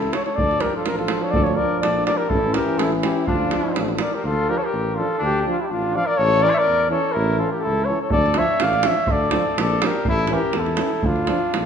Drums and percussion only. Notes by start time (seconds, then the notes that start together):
0.02 davul high
0.13 davul high
0.26 davul high
0.38 davul low
0.51 davul high
0.60 davul high
0.86 davul high
0.99 davul high
1.08 davul high
1.34 davul low
1.46 davul high
1.83 davul high
2.07 davul high
2.30 davul low
2.54 davul high
2.79 davul high
2.92 davul high
3.03 davul high
3.27 davul low
3.51 davul high
3.76 davul high
3.88 davul high
3.98 davul high
8.10 davul low
8.26 davul high
8.34 davul high
8.60 davul high
8.73 davul high
8.83 davul high
9.07 davul low
9.31 davul high
9.58 davul high
9.70 davul high
9.82 davul high
10.05 davul low
10.19 davul high
10.27 davul high
10.53 davul high
10.66 davul high
10.77 davul high
11.03 davul low
11.16 davul high
11.27 davul high
11.54 davul high